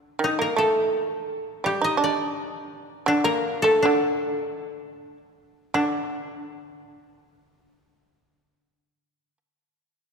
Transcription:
0.00 0.30 D4 medium
0.19 0.36 D#3 soft
0.24 2.10 D#4 medium
0.39 0.55 A#3 medium
0.39 0.64 A#4 medium
0.56 0.89 A3 medium
0.56 2.49 A4 medium
1.64 1.80 G3 medium
1.64 3.70 G4 medium
1.81 1.97 D#4 medium
1.81 2.10 D#5 medium
1.97 2.31 D4 medium
2.04 3.64 D5 medium
3.06 3.24 D3 medium
3.06 3.82 D4 medium
3.24 3.61 A#3 medium
3.24 3.68 A#4 medium
3.62 3.83 A3 medium
3.62 5.53 A4 medium
3.82 5.17 D3 soft
3.82 5.74 D4 medium
5.74 9.37 D3 medium
5.74 9.37 D4 soft

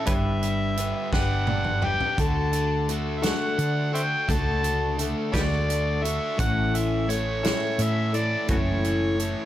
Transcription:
0.05 0.92 G1 medium
0.05 1.83 G2 medium
0.05 0.75 G3 medium
0.05 0.77 D4 medium
0.05 0.77 G4 medium
0.05 0.13 B4 medium
0.05 0.78 B4 medium
0.05 0.13 C#5 medium
0.05 1.09 E5 loud
0.05 kick loud
0.05 closed hi-hat medium
0.43 2.18 G3 medium
0.43 closed hi-hat medium
0.76 1.12 G3 medium
0.76 2.18 B3 medium
0.76 1.13 D4 medium
0.76 1.13 G4 medium
0.76 1.11 B4 medium
0.76 closed hi-hat medium
1.12 1.97 G1 medium
1.12 1.84 G3 medium
1.12 1.84 D4 medium
1.12 1.81 G4 medium
1.12 1.82 G4 medium
1.12 1.80 B4 medium
1.12 1.86 F#5 medium
1.12 kick medium
1.12 snare medium
1.47 3.57 D4 medium
1.47 high tom medium
1.64 mid tom medium
1.81 2.17 D4 soft
1.81 2.18 G4 medium
1.81 2.18 G4 soft
1.81 2.17 B4 medium
1.81 2.22 G5 medium
1.81 mid tom medium
2.00 floor tom medium
2.17 3.31 D2 medium
2.17 2.88 D3 medium
2.17 2.52 D3 medium
2.17 2.87 A3 medium
2.17 2.88 D4 medium
2.17 2.89 F#4 medium
2.17 2.90 A4 medium
2.17 kick loud
2.17 closed hi-hat medium
2.21 2.90 A5 loud
2.53 4.27 D3 medium
2.53 closed hi-hat medium
2.88 3.22 A3 medium
2.88 4.98 A3 medium
2.88 3.21 D4 medium
2.88 3.21 F#4 medium
2.88 3.21 A4 medium
2.88 closed hi-hat medium
3.18 3.27 E5 medium
3.22 3.94 D3 medium
3.22 4.28 A3 medium
3.22 3.93 D4 medium
3.22 3.93 F#4 medium
3.22 3.92 A4 medium
3.22 3.93 F#5 medium
3.22 snare loud
3.22 closed hi-hat medium
3.58 4.15 D3 medium
3.58 5.34 D4 medium
3.58 closed hi-hat medium
3.92 4.28 D4 soft
3.92 5.31 F#4 medium
3.92 4.28 A4 soft
3.92 4.03 C5 medium
3.92 4.01 E5 medium
3.92 4.33 G5 medium
3.92 closed hi-hat medium
4.28 5.13 C#2 medium
4.28 4.62 D3 medium
4.28 4.97 A3 medium
4.28 4.97 D4 medium
4.28 4.98 F#4 medium
4.28 5.00 A4 loud
4.28 5.00 A5 loud
4.28 kick medium
4.28 closed hi-hat medium
4.63 6.39 D3 medium
4.63 closed hi-hat medium
4.97 5.33 A3 medium
4.97 7.09 A3 medium
4.97 5.32 D4 medium
4.97 5.32 F#4 medium
4.97 5.31 A4 medium
4.97 closed hi-hat medium
5.32 6.18 D2 medium
5.32 6.04 D3 medium
5.32 6.37 A3 medium
5.32 6.03 D4 medium
5.32 6.03 F#4 medium
5.32 6.02 F#4 medium
5.32 5.42 G4 medium
5.32 6.01 A4 medium
5.32 5.41 B4 medium
5.32 6.05 D5 loud
5.32 kick medium
5.32 snare loud
5.32 closed hi-hat medium
5.70 6.39 D4 medium
5.70 closed hi-hat medium
6.02 6.38 D4 soft
6.02 6.38 F#4 soft
6.02 6.39 F#4 medium
6.02 6.37 A4 medium
6.02 6.39 E5 loud
6.02 closed hi-hat medium
6.37 7.52 A1 medium
6.37 7.08 A2 medium
6.37 8.14 A2 medium
6.37 7.44 E3 medium
6.37 7.07 A3 medium
6.37 7.07 C#4 medium
6.37 7.09 E4 medium
6.37 7.09 A4 medium
6.37 6.79 F#5 loud
6.37 kick loud
6.37 closed hi-hat medium
6.75 8.85 E3 medium
6.75 7.11 E5 loud
6.75 closed hi-hat medium
7.07 7.43 A3 medium
7.07 8.84 A3 medium
7.07 7.43 C#4 medium
7.07 7.42 E4 medium
7.07 7.42 A4 medium
7.07 7.84 C#5 loud
7.07 closed hi-hat medium
7.43 8.15 A2 medium
7.43 8.48 E3 medium
7.43 8.15 A3 medium
7.43 8.14 C#4 medium
7.43 8.13 E4 medium
7.43 8.14 E4 medium
7.43 8.12 A4 medium
7.43 snare loud
7.43 closed hi-hat medium
7.79 8.35 A2 medium
7.79 9.45 C#4 medium
7.79 8.18 E5 loud
7.79 closed hi-hat medium
8.13 8.47 A3 soft
8.13 8.48 E4 soft
8.13 9.45 E4 medium
8.13 8.48 A4 soft
8.13 8.49 D5 medium
8.13 closed hi-hat medium
8.47 9.34 F#1 medium
8.47 9.18 A2 medium
8.47 9.45 A2 medium
8.47 9.19 E3 medium
8.47 9.14 A3 medium
8.47 9.16 C#4 medium
8.47 9.16 E4 medium
8.47 8.56 F#4 medium
8.47 9.18 A4 medium
8.47 8.57 A4 medium
8.47 9.45 C#5 medium
8.47 kick loud
8.47 closed hi-hat medium
8.84 9.45 E3 medium
8.84 closed hi-hat soft
9.16 9.45 A3 medium
9.16 9.45 C#4 medium
9.16 9.45 E4 medium
9.16 9.45 A4 medium
9.16 closed hi-hat medium
9.20 9.45 A3 medium

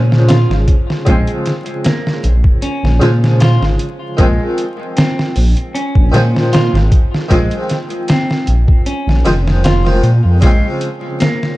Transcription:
0.00 0.45 A#2 medium
0.00 1.02 C#3 medium
0.00 1.02 F3 medium
0.00 1.03 G#3 medium
0.00 0.25 C#4 medium
0.00 1.04 C5 medium
0.12 snare soft
0.28 0.52 F4 medium
0.28 snare loud
0.28 closed hi-hat medium
0.50 0.66 G#1 medium
0.50 snare medium
0.68 kick medium
0.68 closed hi-hat medium
0.90 snare soft
1.05 1.25 A#1 loud
1.05 2.97 C#3 medium
1.05 2.97 F3 medium
1.05 1.30 G#3 medium
1.05 2.98 G#3 medium
1.05 kick loud
1.05 closed hi-hat medium
1.10 2.99 C4 medium
1.27 closed hi-hat soft
1.46 snare soft
1.46 closed hi-hat medium
1.66 closed hi-hat soft
1.84 2.22 A#3 medium
1.84 snare loud
1.84 closed hi-hat medium
2.07 snare soft
2.24 2.42 A#1 medium
2.24 closed hi-hat medium
2.44 kick medium
2.62 3.37 C#4 medium
2.62 closed hi-hat medium
2.83 2.99 A#1 medium
2.83 snare soft
3.00 3.57 A#2 medium
3.00 4.13 C#3 medium
3.00 4.14 F3 medium
3.00 4.15 G#3 medium
3.00 snare medium
3.00 closed hi-hat medium
3.04 4.15 C5 medium
3.24 snare medium
3.40 3.64 F4 medium
3.40 snare loud
3.40 closed hi-hat medium
3.62 3.78 G#1 medium
3.62 snare soft
3.79 closed hi-hat medium
4.17 4.37 A#1 loud
4.17 6.08 D#3 medium
4.17 6.09 F3 medium
4.17 4.42 G#3 medium
4.17 6.10 G#3 medium
4.17 kick loud
4.17 closed hi-hat medium
4.21 6.10 C4 medium
4.58 closed hi-hat medium
4.97 5.34 C4 medium
4.97 snare loud
4.97 closed hi-hat medium
5.19 snare soft
5.36 5.54 A#1 medium
5.36 open hi-hat medium
5.57 closed hi-hat soft
5.75 6.49 C#4 medium
5.75 closed hi-hat medium
5.95 6.11 A#1 medium
5.95 kick medium
6.12 6.69 A#2 medium
6.12 7.25 D#3 medium
6.12 7.26 F3 medium
6.12 7.27 G#3 medium
6.12 snare soft
6.12 closed hi-hat medium
6.16 7.28 C5 loud
6.36 snare soft
6.53 6.76 F4 medium
6.53 snare loud
6.53 closed hi-hat medium
6.73 6.89 G#1 loud
6.73 snare medium
6.92 kick medium
6.92 closed hi-hat medium
7.14 snare soft
7.29 7.49 A#1 loud
7.29 9.20 D#3 medium
7.29 9.21 F3 medium
7.29 7.54 G#3 medium
7.29 9.21 G#3 medium
7.29 kick loud
7.29 closed hi-hat medium
7.33 9.22 C4 medium
7.51 closed hi-hat soft
7.69 snare soft
7.69 closed hi-hat medium
7.90 closed hi-hat soft
8.08 8.46 C4 medium
8.08 snare loud
8.08 closed hi-hat medium
8.31 snare soft
8.47 8.66 A#1 medium
8.47 closed hi-hat medium
8.68 kick medium
8.86 9.61 C#4 medium
8.86 closed hi-hat medium
9.07 9.23 A#1 medium
9.07 snare soft
9.25 10.00 F1 medium
9.25 9.80 D#3 medium
9.25 9.80 F3 medium
9.25 9.80 G#3 medium
9.25 9.81 C5 medium
9.25 snare medium
9.25 closed hi-hat medium
9.48 snare medium
9.64 9.88 F4 loud
9.64 snare loud
9.64 closed hi-hat medium
9.84 10.37 D#3 medium
9.84 10.38 F3 medium
9.84 10.38 G#3 medium
9.84 10.39 C5 medium
9.84 snare soft
10.03 10.21 A#2 loud
10.03 closed hi-hat medium
10.25 10.40 F2 medium
10.41 10.60 A#1 loud
10.41 11.57 C#3 medium
10.41 11.57 F3 medium
10.41 10.66 G#3 medium
10.41 11.57 G#3 medium
10.41 kick loud
10.41 closed hi-hat medium
10.45 11.57 C4 medium
10.81 closed hi-hat medium
11.20 11.57 A#3 medium
11.20 snare loud
11.20 closed hi-hat medium
11.43 snare soft

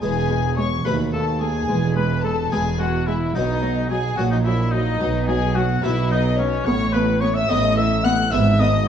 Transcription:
0.01 0.75 E1 medium
0.01 0.73 E2 medium
0.01 0.76 E2 medium
0.01 0.10 G#3 medium
0.01 0.81 G#3 soft
0.01 0.82 B3 soft
0.01 0.82 E4 soft
0.01 0.53 G#4 medium
0.01 0.54 G#4 medium
0.01 0.53 G#5 loud
0.29 0.37 G#3 medium
0.57 0.65 G#3 medium
0.57 0.69 C#5 medium
0.57 0.65 C#5 medium
0.57 0.85 C#6 loud
0.85 1.59 D#2 medium
0.85 1.56 D#2 medium
0.85 1.59 D#2 medium
0.85 0.93 A3 medium
0.85 1.65 A3 soft
0.85 1.65 B3 soft
0.85 1.65 F#4 soft
0.85 0.98 B4 medium
0.85 0.94 B4 medium
0.85 1.13 B5 medium
1.13 1.21 A3 medium
1.13 1.25 A4 medium
1.13 1.40 A4 medium
1.13 1.40 A5 loud
1.41 1.49 A3 medium
1.41 1.95 G#4 medium
1.41 1.97 G#4 medium
1.41 1.96 G#5 loud
1.69 2.42 E1 medium
1.69 2.40 E2 medium
1.69 2.42 E2 medium
1.69 1.77 G#3 medium
1.96 2.04 G#3 medium
1.96 2.23 B4 medium
1.96 2.24 B4 medium
1.96 2.23 B5 medium
2.24 2.32 G#3 medium
2.24 2.36 A4 medium
2.24 2.52 A4 medium
2.24 2.52 A5 loud
2.52 3.25 E1 medium
2.52 3.25 E2 medium
2.52 3.23 E2 medium
2.52 3.12 G#3 soft
2.52 2.60 G#3 medium
2.52 3.12 B3 soft
2.52 3.12 E4 soft
2.52 2.64 G#4 medium
2.52 2.80 G#4 medium
2.52 2.79 G#5 loud
2.79 2.87 G#3 medium
2.79 3.08 F#4 medium
2.79 3.07 F#5 medium
3.07 3.15 G#3 medium
3.07 3.34 E4 medium
3.07 3.15 E5 medium
3.35 4.08 B1 medium
3.35 4.08 B2 medium
3.35 4.06 B2 medium
3.35 3.43 F#3 medium
3.35 4.14 B3 soft
3.35 3.89 D#4 medium
3.35 3.90 D#4 medium
3.35 4.14 F#4 soft
3.35 3.90 D#5 loud
3.62 3.70 F#3 medium
3.90 3.98 F#3 medium
3.90 4.16 G#4 medium
3.90 4.17 G#4 medium
3.90 4.17 G#5 loud
4.17 4.91 A#1 medium
4.17 4.88 A#2 medium
4.17 4.91 A#2 medium
4.17 4.26 F#3 medium
4.17 4.97 C#4 soft
4.17 4.23 F#4 medium
4.17 4.32 F#4 medium
4.17 4.97 F#4 soft
4.17 4.32 F#5 medium
4.31 4.37 D#4 medium
4.31 4.38 D#4 medium
4.31 4.38 D#5 medium
4.44 4.53 F#3 medium
4.44 4.73 E4 medium
4.44 4.53 E4 medium
4.44 4.72 E5 loud
4.72 4.81 F#3 medium
4.72 5.27 D#4 medium
4.72 5.27 D#5 loud
5.01 5.74 B1 medium
5.01 5.74 B2 medium
5.01 5.71 B2 medium
5.01 5.09 F#3 medium
5.28 5.36 F#3 medium
5.28 5.57 G#4 medium
5.28 5.56 G#4 medium
5.28 5.55 G#5 loud
5.55 5.64 F#3 medium
5.55 5.85 F#4 medium
5.55 5.65 F#4 medium
5.55 5.83 F#5 loud
5.83 6.57 B1 medium
5.83 6.57 B2 medium
5.83 6.54 B2 medium
5.83 5.91 F#3 medium
5.83 6.44 B3 medium
5.83 6.10 E4 medium
5.83 6.11 E4 medium
5.83 6.44 F#4 medium
5.83 6.11 E5 loud
6.11 6.19 F#3 medium
6.11 6.24 D#4 medium
6.11 6.39 D#4 medium
6.11 6.38 D#5 loud
6.38 6.47 F#3 medium
6.38 6.67 C#4 medium
6.38 6.66 C#5 loud
6.65 7.40 A1 medium
6.65 7.40 A2 medium
6.65 7.37 A2 medium
6.65 6.74 B3 medium
6.65 6.94 C#5 loud
6.65 6.94 C#6 loud
6.93 7.02 B3 medium
6.93 7.22 B4 medium
6.93 7.22 B5 medium
7.20 7.30 B3 medium
7.20 7.36 C#5 medium
7.20 7.27 C#6 loud
7.34 7.50 E5 medium
7.34 7.49 E5 loud
7.34 7.50 E6 loud
7.48 8.22 A1 loud
7.48 8.20 A2 medium
7.48 8.23 A2 loud
7.48 7.57 B3 medium
7.48 8.09 B3 medium
7.48 8.10 D#4 medium
7.48 7.75 D#5 loud
7.48 7.77 D#5 loud
7.48 7.77 D#6 loud
7.76 7.85 B3 medium
7.76 8.05 E5 loud
7.76 8.05 E5 medium
7.76 8.04 E6 loud
8.04 8.12 B3 medium
8.04 8.32 F#5 medium
8.04 8.12 F#5 medium
8.04 8.32 F#6 loud
8.31 8.88 G#1 loud
8.31 8.88 G#2 medium
8.31 8.88 G#2 loud
8.31 8.88 G#3 medium
8.31 8.40 B3 medium
8.31 8.88 B3 medium
8.31 8.88 E4 medium
8.31 8.61 E5 loud
8.31 8.59 E5 loud
8.31 8.40 E6 loud
8.59 8.68 B3 medium
8.59 8.86 D#5 loud
8.59 8.88 D#5 loud
8.59 8.87 D#6 loud

